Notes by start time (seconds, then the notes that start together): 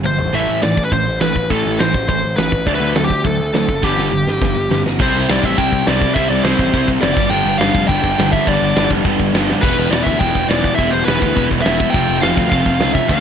0.04 G1 G2 D3 C5, mid tom
0.19 A1, floor tom
0.33 A1 A2 E3 A3 E5, open hi-hat
0.49 A1
0.62 A1 A2 E3 D5, snare, open hi-hat
0.77 A1, kick
0.83 B4
0.91 A1 A2 E3 C5, kick, open hi-hat
1.08 A1
1.20 A1 A2 E3 B4, snare, open hi-hat
1.36 A1, kick
1.50 A1 A2 E3 A3 A4, kick, open hi-hat
1.66 A1
1.80 A1 A2 E3 C5, snare, open hi-hat
1.94 A1, kick
2.09 A1 A2 E3 C5, kick, open hi-hat
2.24 A1
2.37 A1 A2 E3 B4, snare, open hi-hat
2.52 A1, kick
2.66 D2 D3 F#3 A3 D4 D5, kick, open hi-hat
2.75 B4
2.80 D2
2.95 D2 D3 F#3 A3 A4, snare, open hi-hat
3.04 G4
3.10 D2, kick
3.25 D2 D3 F#3 A3 A4, kick, open hi-hat
3.39 D2
3.53 D2 D3 F#3 A3, snare, open hi-hat
3.69 F#1, kick
3.83 G1 G2 D3 F3 G3 G4, kick, snare
3.97 G1, snare
4.12 G1 G2 D3
4.27 G1, snare
4.42 G1 G2 D3, kick, snare
4.56 G1
4.71 G1 G2 D3, snare
4.86 G1, snare
4.99 C2 C3 G3 C4 E4 C5, kick, crash
5.15 C2
5.28 C2 C3 G3 C4 E4 D5, snare, open hi-hat
5.43 A1 E5, kick
5.57 C2 C3 G3 C4 E4 G5, kick, open hi-hat
5.72 C2, kick
5.87 C2 C3 G3 C4 E4 D5, snare, open hi-hat
6.01 kick
6.14 C2 C3 G3 C4 E4 E5, kick, open hi-hat
6.18 C4
6.30 C2 D5
6.44 C2 C3 G3 C4 E4 C5, snare, open hi-hat
6.59 A1, kick
6.73 C2 C3 G3 C4 E4, kick, open hi-hat
6.88 C2, kick
7.02 F#1 C3 G3 C4 E4 D5, snare, open hi-hat
7.17 G1 G2 D3 G3, kick, crash
7.30 G1 G2 D3 G3 B3 D4 G5
7.46 G1
7.59 G1 D3 G3 B3 D4 F5, snare, open hi-hat
7.63 G2
7.75 F1, kick
7.88 G1 G2 D3 G3 B3 D4 G5, kick, open hi-hat
8.04 G1, kick
8.18 G1 G2 D3 G3 B3 D4, snare, open hi-hat
8.31 G2 D3 G3 E5, kick
8.47 G1 G2 D3 G3 B3 D4 D5, kick, open hi-hat
8.62 G1
8.76 G1 G2 D3 G3 B3 D4, snare, open hi-hat
8.91 F1, kick
9.05 G1 G2 D3 G3 B3 D4, kick, open hi-hat
9.19 G1, kick
9.34 G1 G2 D3 G3 B3 D4, snare, open hi-hat
9.50 snare
9.61 E1 E2 B2 E3 G3 B3 E4 B4, kick, open hi-hat, crash
9.77 E1
9.90 E1 E2 B2 E3 G3 B3 E4 D5, snare, open hi-hat
10.04 D2 E5, kick
10.19 E1 E2 B2 E3 G3 B3 E4 G5, kick, open hi-hat
10.35 E1, kick
10.49 E1 E2 B2 E3 G3 B3 E4 D5, snare, open hi-hat
10.64 kick
10.75 E1 E2 B2 E3 G3 B3 E4 E5, kick, open hi-hat
10.81 E3
10.91 E1 C5
11.05 E1 E2 B2 B3 E4 B4, snare, open hi-hat
11.09 E3 G3
11.22 D2, kick
11.36 E1 E2 B2 E3 G3 B3 E4, kick, open hi-hat
11.51 E1, kick
11.62 E1 E2 B2 E4 E5, open hi-hat
11.66 E3 G3 B3, snare
11.80 kick
11.90 F2 G5
11.94 F1 F2 C3 F3 A3 C4 F4, kick, crash
12.09 F1
12.21 F1 F2 C3 F3 A3 C4 F4 F5, snare, open hi-hat
12.37 D2, kick
12.50 F1 F2 C3 F3 A3 C4 F5, kick, open hi-hat
12.54 F4
12.66 F1, kick
12.80 C#2 F2 C3 F3 A3 C4 F4, snare, open hi-hat
12.94 E5, kick
13.08 D2 D3 A3 C4 D4 F#4 F#5, kick, snare